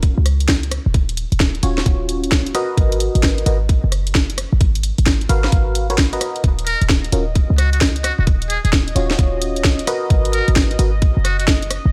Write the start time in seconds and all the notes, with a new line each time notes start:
Already playing: D#1
0.03 kick, closed hi-hat
0.18 C#2
0.26 cross-stick, open hi-hat
0.40 closed hi-hat
0.48 kick, snare
0.63 closed hi-hat
0.71 cross-stick, open hi-hat
0.86 D#1
0.94 D#1, kick, closed hi-hat
1.09 closed hi-hat
1.17 open hi-hat
1.32 D#1, closed hi-hat
1.40 kick, snare
1.55 closed hi-hat
1.63 D#1 C#4 F4 F#4 C#5, open hi-hat
1.78 cross-stick, snare
1.86 D#1, kick, closed hi-hat
2.09 open hi-hat
2.24 closed hi-hat
2.32 kick, snare
2.46 closed hi-hat
2.55 F#4 A#4 B4 D#5, cross-stick, open hi-hat
2.77 G#1, kick, closed hi-hat
2.92 closed hi-hat
3.00 open hi-hat
3.15 G#1, closed hi-hat
3.23 kick, snare
3.38 closed hi-hat
3.46 G#1 F#4 A#4 B4 D#5, open hi-hat
3.69 kick, closed hi-hat
3.84 F#1
3.92 cross-stick, open hi-hat
4.07 closed hi-hat
4.15 kick, snare
4.30 closed hi-hat
4.38 cross-stick, open hi-hat
4.53 G#1
4.61 G#1, kick, closed hi-hat
4.75 closed hi-hat
4.83 open hi-hat
4.98 G#1, closed hi-hat
5.06 kick, snare
5.21 closed hi-hat
5.29 G#1 F#4 A#4 B4 F5, open hi-hat
5.44 cross-stick, snare
5.52 G#1, kick, closed hi-hat
5.75 open hi-hat
5.90 F#4 A#4 B4 C#5, closed hi-hat
5.98 kick, snare
6.13 F#4 A#4 B4 D#5, closed hi-hat
6.21 cross-stick, open hi-hat
6.36 closed hi-hat
6.44 D#1 D#5, kick, closed hi-hat
6.59 closed hi-hat
6.67 A#4, open hi-hat
6.82 D#1, closed hi-hat
6.89 kick, snare
7.04 closed hi-hat
7.12 D#1 C#4 F4 F#4 A#4, open hi-hat
7.35 kick, closed hi-hat
7.50 C#2
7.58 F#4, cross-stick, open hi-hat
7.73 F#4, closed hi-hat
7.81 kick, snare
7.96 closed hi-hat
8.04 F#4, cross-stick, open hi-hat
8.19 D#1 F#4
8.27 D#1, kick, closed hi-hat
8.42 closed hi-hat
8.50 G#4, open hi-hat
8.65 D#1 G#4, closed hi-hat
8.73 kick, snare
8.88 closed hi-hat
8.96 D#1 C#4 F4 F#4 C#5, open hi-hat
9.11 cross-stick, snare
9.19 D#1, kick, closed hi-hat
9.42 open hi-hat
9.56 closed hi-hat
9.64 kick, snare
9.79 closed hi-hat
9.87 F#4 A#4 B4 D#5, cross-stick, open hi-hat
10.10 G#1, kick, closed hi-hat
10.25 closed hi-hat
10.33 A#4, open hi-hat
10.48 G#1, closed hi-hat
10.56 kick, snare
10.71 closed hi-hat
10.79 G#1 F#4 A#4 B4 D#5, open hi-hat
11.02 kick, closed hi-hat
11.17 F#1
11.25 F#4, cross-stick, open hi-hat
11.39 F#4, closed hi-hat
11.48 kick, snare
11.62 closed hi-hat
11.71 cross-stick, open hi-hat
11.85 G#1